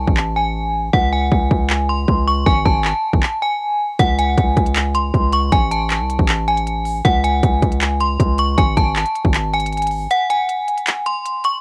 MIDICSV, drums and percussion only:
0, 0, Header, 1, 2, 480
1, 0, Start_track
1, 0, Tempo, 382166
1, 1176, Time_signature, 4, 2, 24, 8
1, 14578, End_track
2, 0, Start_track
2, 0, Title_t, "Drums"
2, 95, Note_on_c, 9, 36, 88
2, 215, Note_on_c, 9, 39, 121
2, 220, Note_off_c, 9, 36, 0
2, 341, Note_off_c, 9, 39, 0
2, 1175, Note_on_c, 9, 36, 120
2, 1301, Note_off_c, 9, 36, 0
2, 1655, Note_on_c, 9, 36, 100
2, 1781, Note_off_c, 9, 36, 0
2, 1896, Note_on_c, 9, 36, 94
2, 2022, Note_off_c, 9, 36, 0
2, 2135, Note_on_c, 9, 39, 116
2, 2260, Note_off_c, 9, 39, 0
2, 2615, Note_on_c, 9, 36, 98
2, 2741, Note_off_c, 9, 36, 0
2, 3095, Note_on_c, 9, 36, 120
2, 3221, Note_off_c, 9, 36, 0
2, 3335, Note_on_c, 9, 36, 94
2, 3461, Note_off_c, 9, 36, 0
2, 3574, Note_on_c, 9, 39, 90
2, 3700, Note_off_c, 9, 39, 0
2, 3935, Note_on_c, 9, 36, 89
2, 4055, Note_on_c, 9, 39, 118
2, 4060, Note_off_c, 9, 36, 0
2, 4180, Note_off_c, 9, 39, 0
2, 5013, Note_on_c, 9, 42, 79
2, 5015, Note_on_c, 9, 36, 119
2, 5139, Note_off_c, 9, 42, 0
2, 5141, Note_off_c, 9, 36, 0
2, 5256, Note_on_c, 9, 42, 86
2, 5382, Note_off_c, 9, 42, 0
2, 5494, Note_on_c, 9, 42, 62
2, 5495, Note_on_c, 9, 36, 98
2, 5620, Note_off_c, 9, 36, 0
2, 5620, Note_off_c, 9, 42, 0
2, 5735, Note_on_c, 9, 42, 53
2, 5736, Note_on_c, 9, 36, 92
2, 5855, Note_off_c, 9, 42, 0
2, 5855, Note_on_c, 9, 42, 52
2, 5862, Note_off_c, 9, 36, 0
2, 5975, Note_on_c, 9, 39, 115
2, 5976, Note_off_c, 9, 42, 0
2, 5976, Note_on_c, 9, 42, 78
2, 6100, Note_off_c, 9, 39, 0
2, 6101, Note_off_c, 9, 42, 0
2, 6213, Note_on_c, 9, 42, 67
2, 6338, Note_off_c, 9, 42, 0
2, 6456, Note_on_c, 9, 36, 98
2, 6457, Note_on_c, 9, 42, 79
2, 6581, Note_off_c, 9, 36, 0
2, 6583, Note_off_c, 9, 42, 0
2, 6688, Note_on_c, 9, 42, 66
2, 6813, Note_off_c, 9, 42, 0
2, 6934, Note_on_c, 9, 42, 79
2, 6935, Note_on_c, 9, 36, 120
2, 7059, Note_off_c, 9, 42, 0
2, 7061, Note_off_c, 9, 36, 0
2, 7176, Note_on_c, 9, 42, 84
2, 7302, Note_off_c, 9, 42, 0
2, 7414, Note_on_c, 9, 39, 92
2, 7414, Note_on_c, 9, 42, 65
2, 7540, Note_off_c, 9, 39, 0
2, 7540, Note_off_c, 9, 42, 0
2, 7658, Note_on_c, 9, 42, 65
2, 7775, Note_on_c, 9, 36, 87
2, 7784, Note_off_c, 9, 42, 0
2, 7895, Note_on_c, 9, 39, 118
2, 7896, Note_on_c, 9, 42, 77
2, 7900, Note_off_c, 9, 36, 0
2, 8020, Note_off_c, 9, 39, 0
2, 8022, Note_off_c, 9, 42, 0
2, 8135, Note_on_c, 9, 42, 38
2, 8255, Note_off_c, 9, 42, 0
2, 8255, Note_on_c, 9, 42, 69
2, 8377, Note_off_c, 9, 42, 0
2, 8377, Note_on_c, 9, 42, 72
2, 8502, Note_off_c, 9, 42, 0
2, 8607, Note_on_c, 9, 46, 73
2, 8733, Note_off_c, 9, 46, 0
2, 8854, Note_on_c, 9, 42, 75
2, 8855, Note_on_c, 9, 36, 121
2, 8979, Note_off_c, 9, 42, 0
2, 8981, Note_off_c, 9, 36, 0
2, 9096, Note_on_c, 9, 42, 84
2, 9222, Note_off_c, 9, 42, 0
2, 9334, Note_on_c, 9, 42, 64
2, 9335, Note_on_c, 9, 36, 102
2, 9460, Note_off_c, 9, 42, 0
2, 9461, Note_off_c, 9, 36, 0
2, 9575, Note_on_c, 9, 42, 52
2, 9576, Note_on_c, 9, 36, 93
2, 9695, Note_off_c, 9, 42, 0
2, 9695, Note_on_c, 9, 42, 53
2, 9702, Note_off_c, 9, 36, 0
2, 9815, Note_on_c, 9, 39, 119
2, 9816, Note_off_c, 9, 42, 0
2, 9816, Note_on_c, 9, 42, 76
2, 9940, Note_off_c, 9, 39, 0
2, 9941, Note_off_c, 9, 42, 0
2, 10053, Note_on_c, 9, 42, 68
2, 10178, Note_off_c, 9, 42, 0
2, 10296, Note_on_c, 9, 36, 98
2, 10297, Note_on_c, 9, 42, 79
2, 10421, Note_off_c, 9, 36, 0
2, 10423, Note_off_c, 9, 42, 0
2, 10528, Note_on_c, 9, 42, 66
2, 10653, Note_off_c, 9, 42, 0
2, 10774, Note_on_c, 9, 42, 77
2, 10775, Note_on_c, 9, 36, 118
2, 10899, Note_off_c, 9, 42, 0
2, 10901, Note_off_c, 9, 36, 0
2, 11016, Note_on_c, 9, 36, 97
2, 11016, Note_on_c, 9, 42, 88
2, 11141, Note_off_c, 9, 36, 0
2, 11142, Note_off_c, 9, 42, 0
2, 11254, Note_on_c, 9, 39, 92
2, 11255, Note_on_c, 9, 42, 53
2, 11375, Note_off_c, 9, 42, 0
2, 11375, Note_on_c, 9, 42, 50
2, 11380, Note_off_c, 9, 39, 0
2, 11498, Note_off_c, 9, 42, 0
2, 11498, Note_on_c, 9, 42, 66
2, 11615, Note_on_c, 9, 36, 91
2, 11624, Note_off_c, 9, 42, 0
2, 11735, Note_on_c, 9, 39, 117
2, 11736, Note_on_c, 9, 42, 79
2, 11741, Note_off_c, 9, 36, 0
2, 11860, Note_off_c, 9, 39, 0
2, 11862, Note_off_c, 9, 42, 0
2, 11975, Note_on_c, 9, 42, 39
2, 12055, Note_off_c, 9, 42, 0
2, 12055, Note_on_c, 9, 42, 52
2, 12135, Note_off_c, 9, 42, 0
2, 12135, Note_on_c, 9, 42, 71
2, 12215, Note_off_c, 9, 42, 0
2, 12215, Note_on_c, 9, 42, 44
2, 12275, Note_off_c, 9, 42, 0
2, 12275, Note_on_c, 9, 42, 56
2, 12335, Note_off_c, 9, 42, 0
2, 12335, Note_on_c, 9, 42, 66
2, 12395, Note_off_c, 9, 42, 0
2, 12395, Note_on_c, 9, 42, 74
2, 12448, Note_on_c, 9, 46, 73
2, 12521, Note_off_c, 9, 42, 0
2, 12574, Note_off_c, 9, 46, 0
2, 12694, Note_on_c, 9, 42, 80
2, 12820, Note_off_c, 9, 42, 0
2, 12937, Note_on_c, 9, 42, 83
2, 13062, Note_off_c, 9, 42, 0
2, 13175, Note_on_c, 9, 42, 64
2, 13301, Note_off_c, 9, 42, 0
2, 13415, Note_on_c, 9, 42, 53
2, 13535, Note_off_c, 9, 42, 0
2, 13535, Note_on_c, 9, 42, 53
2, 13655, Note_on_c, 9, 39, 113
2, 13656, Note_off_c, 9, 42, 0
2, 13656, Note_on_c, 9, 42, 75
2, 13781, Note_off_c, 9, 39, 0
2, 13782, Note_off_c, 9, 42, 0
2, 13893, Note_on_c, 9, 42, 70
2, 14019, Note_off_c, 9, 42, 0
2, 14137, Note_on_c, 9, 42, 78
2, 14263, Note_off_c, 9, 42, 0
2, 14368, Note_on_c, 9, 42, 66
2, 14493, Note_off_c, 9, 42, 0
2, 14578, End_track
0, 0, End_of_file